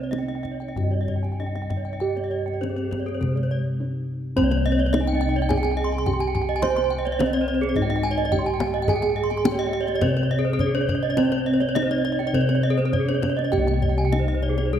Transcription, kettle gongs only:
Already playing: C4
0.12 C#4
0.76 G2
1.40 C#4
2.01 G4
2.62 C#4
3.21 C3
3.80 C#4
4.36 C4
4.41 C2
4.93 C#4
6.07 C#4
6.63 C5
7.19 C#4
7.76 G#2
8.32 C#4
8.88 G#4
9.45 C#4
10.02 C3
10.59 C#4
11.17 C4
11.75 C#4
12.34 C3
12.93 C#4
13.52 G4
13.58 C2
14.13 C#4

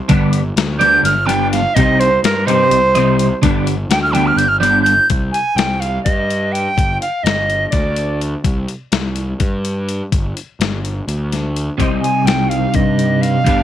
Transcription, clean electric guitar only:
0.08 D3 G3 B3 D4
0.79 D3 G3 B3 D4
1.26 D3 G3 B3 D4
1.76 C3 G3 C4 D#4
2.47 C3 G3 C4 D#4
2.95 C3 G3 C4 D#4
3.42 D3 G3 B3 D4
4.13 D3 G3 B3 D4
4.60 D3 G3 B3 D4
11.78 C3 G3 C4 D#4
13.44 G2 D3 G3 B3 D4

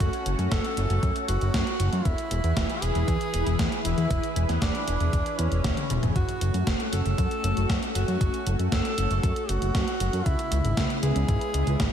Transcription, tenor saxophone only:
Already playing: F#4
0.52 A4
1.29 F#4
2.05 E4
2.82 G#4
3.85 E4
4.62 D4
5.39 C#4
6.16 F#4
6.93 A4
7.95 F#4
8.72 A4
9.49 F#4
10.26 E4
11.03 G#4

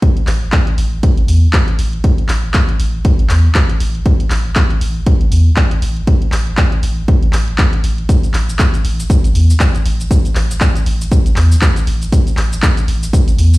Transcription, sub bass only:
0.28 A1
0.78 A1
1.18 A1
1.28 E2
1.79 A1
2.29 A1
2.80 A1
3.19 A1
3.30 E2
3.80 A1
4.31 A1
4.81 A1
5.21 A1
5.32 E2
5.82 A1
6.33 A1
6.83 A1
7.23 A1
7.34 A1
7.84 A1
8.34 A1
8.85 A1
9.24 A1
9.35 E2
9.86 A1
10.36 A1
10.86 A1
11.26 A1
11.37 E2
11.87 A1
12.38 A1
12.88 A1
13.28 A1
13.39 E2

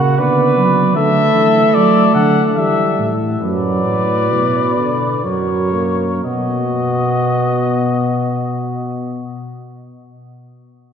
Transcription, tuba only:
Already playing: C#3
0.19 D3
0.57 F#3
0.96 D3
1.35 E3
1.75 F#3
2.15 D3
2.57 E3
2.99 A2
3.41 F#2
3.85 A2
4.31 B2
5.25 F#2
6.25 B2

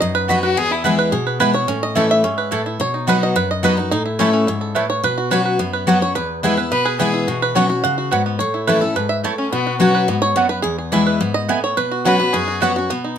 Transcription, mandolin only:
0.28 B3 F#4 D#5 B5
0.84 B3 E4 B4 G#5
1.40 B3 E4 B4 G#5
1.95 A3 E4 C#5 A5
2.51 A3 E4 C#5 A5
3.07 B3 F#4 D#5 B5
3.63 B3 F#4 D#5 B5
4.19 A3 E4 C#5 A5
4.75 A3 E4 C#5 A5
5.31 B3 F#4 C#5 F#5
5.87 B3 F#4 C#5 F#5
6.43 B3 E4 B4 G#5
6.99 B3 E4 B4 G#5
7.55 B3 F#4 C#5 F#5
8.11 B3 F#4 C#5 F#5
8.67 A3 E4 C#5 A5
9.24 A3 E4 C#5 A5
9.80 B3 F#4 C#5 F#5
10.36 B3 F#4 C#5 F#5
10.92 B3 E4 B4 G#5
11.48 B3 E4 B4 G#5
12.05 B3 F#4 C#5 F#5
12.61 B3 F#4 C#5 F#5

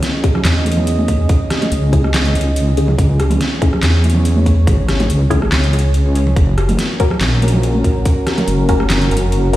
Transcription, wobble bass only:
0.45 E2
1.72 C#2
2.35 C#2
2.99 C#2
3.83 E2
4.67 G#1
5.09 C#2
5.52 C#2
6.36 F#1
7.21 A#1
8.48 F#1
9.11 F#1

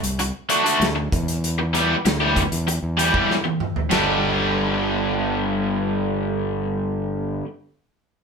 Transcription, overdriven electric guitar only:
0.19 muted overdriven electric guitar stroke
0.49 D3 A3 D4 F#4
0.63 D3 A3 D4 F#4
0.95 muted overdriven electric guitar stroke
1.58 muted overdriven electric guitar stroke
1.73 E3 G3 B3 G4
2.05 muted overdriven electric guitar stroke
2.20 E3 G3 B3 G4
2.67 muted overdriven electric guitar stroke
2.98 E3 G3 B3 G4
3.13 E3 G3 B3 G4
3.44 muted overdriven electric guitar stroke
3.90 G2 D3 G3 B3 D4
3.94 G4

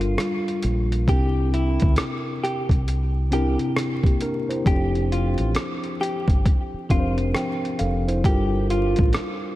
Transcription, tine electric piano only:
Already playing: G3 D4 F4 A4 A#4
1.07 C3 C4 D4 E4 A#4
3.30 C3 C4 D4 E4
3.34 A#4
4.05 A#3 G4
4.22 D4 A#4
4.49 E4 C5
4.65 F3 C4 D4 G4
4.69 A4
6.89 F3 C4 D4 G4
6.93 A#4
7.00 C5
7.35 G5
7.79 A4 F5
8.08 E4 C5
8.25 G3 D4 F4 A4
8.29 A#4

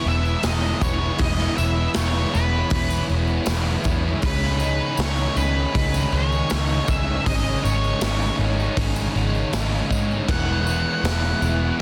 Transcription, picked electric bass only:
0.06 E1
0.44 E1
0.81 E1
1.20 E1
1.59 E1
1.96 E1
2.35 E1
2.71 E1
3.10 E1
3.47 E1
3.85 E2
4.23 C#2
4.99 C#2
5.36 C#2
5.75 C#2
6.13 C#2
6.51 C#2
6.89 C#2
7.27 G#1
7.64 G#1
8.01 G#1
8.39 G#1
8.77 G#1
9.15 G#1
9.53 G#1
9.90 G#2
10.29 E1
11.03 E1
11.42 E1

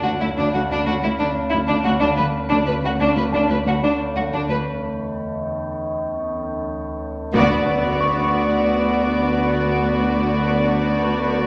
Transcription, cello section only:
0.05 D2
0.21 D2
0.38 D2
0.55 D2
0.71 D2
0.87 D2
1.03 D2
1.20 D2
1.53 D2
1.70 D2
1.86 D2
2.01 D2
2.18 D2
2.51 D2
2.67 D2
2.84 D2
3.00 D2
3.16 D2
3.32 D2
3.49 D2
3.66 D2
3.82 D2
4.15 D2
4.32 D2
4.48 D2
7.35 D2

